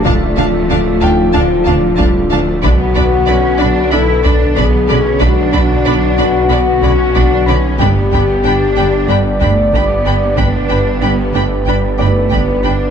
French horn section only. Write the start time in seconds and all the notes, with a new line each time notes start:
0.05 F4
0.37 F4
2.64 F#4
3.93 A4
4.60 G#4
5.24 F#4
5.55 F#4
7.79 G4
9.09 D5
10.37 B4
10.99 B4